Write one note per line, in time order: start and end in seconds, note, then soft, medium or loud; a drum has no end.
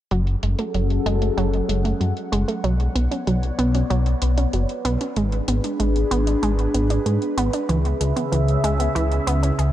0.11 0.36 F#1 loud
0.11 0.19 F#3 loud
0.11 2.62 F#3 medium
0.11 2.62 C#4 medium
0.11 2.62 G#4 medium
0.11 2.62 A4 medium
0.11 5.13 F#5 medium
0.11 closed hi-hat medium
0.27 closed hi-hat soft
0.43 0.55 F#1 loud
0.43 0.56 G#3 medium
0.43 closed hi-hat medium
0.59 0.67 A3 medium
0.59 closed hi-hat soft
0.74 0.99 F#1 medium
0.74 0.82 F#3 medium
0.74 closed hi-hat soft
0.90 closed hi-hat soft
1.06 1.30 F#1 medium
1.06 1.19 G#3 loud
1.06 closed hi-hat medium
1.22 1.35 A3 medium
1.22 closed hi-hat medium
1.37 1.62 F#1 medium
1.37 1.45 F#3 loud
1.37 closed hi-hat medium
1.54 closed hi-hat soft
1.69 1.94 F#1 loud
1.69 1.82 G#3 medium
1.69 closed hi-hat medium
1.85 1.93 A3 medium
1.85 closed hi-hat medium
2.01 2.13 F#2 medium
2.01 2.08 F#3 medium
2.01 closed hi-hat soft
2.17 closed hi-hat soft
2.32 2.45 F#1 medium
2.32 2.45 G#3 loud
2.32 closed hi-hat medium
2.48 2.61 A3 medium
2.48 closed hi-hat soft
2.64 2.88 B1 loud
2.64 2.72 F#3 loud
2.64 5.14 B3 medium
2.64 9.72 B4 medium
2.64 5.14 C#5 medium
2.64 5.14 D5 medium
2.64 closed hi-hat medium
2.80 closed hi-hat soft
2.95 3.08 B1 loud
2.95 3.08 B3 medium
2.95 closed hi-hat medium
3.11 3.19 C#4 medium
3.11 closed hi-hat medium
3.27 3.52 B1 medium
3.27 3.35 F#3 medium
3.27 closed hi-hat medium
3.43 closed hi-hat soft
3.59 3.83 B1 medium
3.59 3.72 B3 loud
3.59 closed hi-hat medium
3.75 3.88 C#4 medium
3.75 closed hi-hat soft
3.90 4.15 B1 medium
3.90 3.98 F#3 loud
3.90 closed hi-hat soft
4.06 closed hi-hat soft
4.22 4.46 B1 loud
4.22 4.35 B3 medium
4.22 closed hi-hat medium
4.38 4.45 C#4 medium
4.38 closed hi-hat soft
4.53 4.66 F#1 medium
4.53 4.61 F#3 medium
4.53 closed hi-hat soft
4.69 closed hi-hat soft
4.85 4.97 B1 medium
4.85 4.98 B3 loud
4.85 closed hi-hat medium
5.01 5.14 C#4 medium
5.01 closed hi-hat medium
5.16 5.41 G#1 loud
5.16 5.24 G#3 loud
5.16 7.67 D4 medium
5.16 7.67 G#4 medium
5.16 closed hi-hat medium
5.32 closed hi-hat soft
5.48 5.60 G#1 medium
5.48 5.61 B3 medium
5.48 closed hi-hat medium
5.64 5.72 D4 medium
5.64 closed hi-hat soft
5.80 6.04 G#1 medium
5.80 5.88 G#3 medium
5.80 closed hi-hat medium
5.96 closed hi-hat soft
6.11 6.36 G#1 medium
6.11 6.24 B3 loud
6.11 closed hi-hat medium
6.27 6.40 D4 medium
6.27 closed hi-hat medium
6.43 6.67 G#1 medium
6.43 6.51 G#3 loud
6.43 closed hi-hat medium
6.59 closed hi-hat soft
6.74 6.99 G#1 loud
6.74 6.87 B3 medium
6.74 closed hi-hat medium
6.90 6.98 D4 medium
6.90 closed hi-hat medium
7.06 7.18 G#2 medium
7.06 7.14 G#3 medium
7.06 closed hi-hat soft
7.22 closed hi-hat soft
7.37 7.50 G#1 medium
7.37 7.51 B3 loud
7.37 closed hi-hat medium
7.53 7.66 D4 medium
7.53 closed hi-hat medium
7.69 7.94 C#2 loud
7.69 9.72 C#3 medium
7.69 7.77 E3 loud
7.69 9.72 C#4 medium
7.69 9.72 G#4 medium
7.69 9.72 E5 medium
7.69 closed hi-hat soft
7.85 closed hi-hat soft
8.01 8.13 C#2 loud
8.01 8.14 G#3 medium
8.01 closed hi-hat medium
8.16 8.24 B3 medium
8.16 closed hi-hat soft
8.32 8.57 C#2 medium
8.32 8.40 E3 medium
8.32 closed hi-hat soft
8.48 closed hi-hat soft
8.64 8.88 C#2 medium
8.64 8.77 G#3 loud
8.64 closed hi-hat medium
8.80 8.93 B3 medium
8.80 closed hi-hat soft
8.95 9.20 C#2 medium
8.95 9.03 E3 loud
8.95 closed hi-hat soft
9.12 closed hi-hat soft
9.27 9.52 C#2 loud
9.27 9.40 B3 medium
9.27 closed hi-hat medium
9.43 9.51 C#4 medium
9.43 closed hi-hat soft
9.59 9.72 C#2 medium
9.59 9.66 G#4 medium
9.59 closed hi-hat soft